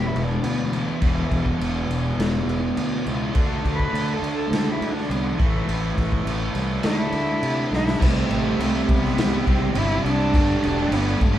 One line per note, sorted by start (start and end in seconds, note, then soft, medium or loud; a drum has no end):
0.00 0.70 E2 medium
0.00 0.71 B2 medium
0.00 0.71 E3 medium
0.06 0.25 E4 medium
0.15 0.37 E1 medium
0.15 crash medium
0.24 0.45 D4 medium
0.43 0.88 D2 medium
0.43 0.62 B3 loud
0.43 crash medium
0.65 1.77 E3 loud
0.72 1.00 E2 medium
0.72 1.01 B2 medium
0.72 1.03 E3 medium
0.72 crash medium
1.01 1.24 E1 medium
1.01 3.04 E2 medium
1.01 3.05 B2 medium
1.01 3.04 E3 loud
1.01 kick loud
1.01 crash medium
1.31 1.54 E1 medium
1.31 kick medium
1.31 crash medium
1.46 kick medium
1.60 1.82 E1 medium
1.60 crash medium
1.89 2.11 E1 medium
1.89 crash medium
2.17 2.40 E1 loud
2.17 snare loud
2.17 crash medium
2.46 2.69 E1 medium
2.46 crash medium
2.77 2.99 D2 medium
2.77 crash medium
3.05 3.29 C#2 medium
3.05 3.34 E2 medium
3.05 3.33 B2 medium
3.05 3.35 E3 medium
3.05 crash medium
3.33 3.58 D2 medium
3.33 5.36 D3 medium
3.33 5.37 A3 loud
3.33 5.38 D4 loud
3.33 kick loud
3.33 crash medium
3.64 3.87 D2 medium
3.64 kick medium
3.64 crash medium
3.74 4.15 B4 loud
3.80 kick medium
3.93 4.15 D2 medium
3.93 crash medium
4.13 4.32 A4 loud
4.22 4.44 D2 medium
4.22 crash medium
4.34 4.52 A4 loud
4.51 4.73 D2 loud
4.51 4.73 A4 loud
4.51 snare loud
4.51 crash medium
4.71 4.93 E4 medium
4.80 5.03 D2 medium
4.80 crash medium
4.91 5.13 D4 medium
4.98 snare soft
5.09 5.32 C2 medium
5.09 5.31 B3 loud
5.09 crash medium
5.29 6.42 E3 loud
5.39 5.62 A1 medium
5.39 6.82 A2 medium
5.39 6.83 E3 medium
5.39 6.84 A3 loud
5.39 kick loud
5.39 crash medium
5.68 5.90 A1 medium
5.68 crash medium
5.98 6.20 A1 medium
5.98 kick medium
5.98 crash medium
6.12 kick medium
6.25 6.48 A1 medium
6.25 crash medium
6.55 6.77 C2 medium
6.55 crash medium
6.83 7.06 D2 medium
6.83 7.98 D3 medium
6.83 7.99 A3 loud
6.83 8.00 D4 loud
6.83 7.70 E4 loud
6.83 snare loud
6.83 crash medium
7.12 7.35 D2 medium
7.12 crash medium
7.43 7.65 C3 medium
7.43 crash medium
7.71 7.94 B1 medium
7.71 8.02 E4 loud
7.71 snare medium
7.88 snare medium
8.00 8.23 C2 medium
8.00 8.58 C3 loud
8.00 10.31 E3 loud
8.00 8.59 G3 loud
8.00 8.47 C4 loud
8.00 8.45 E4 loud
8.00 8.44 G4 loud
8.00 kick loud
8.00 crash loud
8.00 crash medium
8.07 8.96 A3 loud
8.29 8.52 A1 medium
8.29 crash medium
8.45 8.59 C4 medium
8.45 8.59 E4 medium
8.45 8.61 G4 medium
8.58 8.80 C2 medium
8.58 9.17 C3 medium
8.58 8.87 G3 loud
8.58 8.87 C4 medium
8.58 8.89 E4 loud
8.58 8.90 G4 loud
8.58 crash medium
8.73 8.88 C4 medium
8.73 8.88 E4 medium
8.73 8.89 G4 medium
8.87 9.11 C2 loud
8.87 9.04 G3 medium
8.87 9.03 C4 medium
8.87 9.03 E4 medium
8.87 9.03 G4 medium
8.87 muted overdriven electric guitar stroke soft
8.87 kick loud
8.87 crash medium
8.94 9.52 B3 loud
9.02 9.33 C4 medium
9.02 9.31 E4 medium
9.02 9.29 G4 medium
9.02 muted distorted electric guitar stroke medium
9.02 snare soft
9.17 9.39 C2 loud
9.17 snare loud
9.17 crash medium
9.33 9.46 C4 medium
9.33 9.47 E4 medium
9.33 9.48 G4 medium
9.46 9.69 C2 medium
9.46 9.62 G3 medium
9.46 9.61 C4 medium
9.46 9.61 E4 medium
9.46 9.61 G4 medium
9.46 kick medium
9.46 crash medium
9.50 9.80 C4 loud
9.62 muted distorted electric guitar stroke medium
9.74 9.97 G1 loud
9.74 10.18 C3 loud
9.74 10.03 G3 loud
9.74 9.91 C4 loud
9.74 9.90 E4 loud
9.74 10.05 E4 loud
9.74 9.88 G4 loud
9.74 crash medium
9.89 10.04 C4 medium
9.89 10.05 E4 medium
9.89 10.06 G4 medium
10.04 10.35 C2 medium
10.04 10.31 G3 medium
10.04 10.32 C4 medium
10.04 10.59 D4 loud
10.04 10.32 E4 medium
10.04 10.33 G4 medium
10.04 crash medium
10.18 10.33 C4 medium
10.18 10.32 E4 medium
10.18 10.31 G4 medium
10.33 10.56 G1 medium
10.33 10.88 G3 medium
10.33 10.78 A3 loud
10.33 10.76 D4 loud
10.33 10.75 G4 loud
10.33 kick loud
10.33 crash medium
10.63 10.85 E1 medium
10.63 10.95 D4 loud
10.63 crash medium
10.76 10.90 A3 medium
10.76 10.90 D4 medium
10.76 10.91 G4 medium
10.89 11.13 G1 loud
10.89 11.18 G3 loud
10.89 11.20 A3 medium
10.89 11.20 D4 loud
10.89 11.20 G4 loud
10.89 crash medium
10.94 11.23 B3 loud
11.08 11.22 A3 medium
11.08 11.21 D4 medium
11.08 11.21 G4 medium
11.19 11.39 G1 medium
11.19 11.39 G3 medium
11.19 11.34 A3 loud
11.19 11.39 A3 loud
11.19 11.33 D4 loud
11.19 11.33 G4 loud
11.19 muted overdriven electric guitar stroke medium
11.19 kick medium
11.19 crash medium
11.34 11.39 G4 medium
11.34 muted distorted electric guitar stroke medium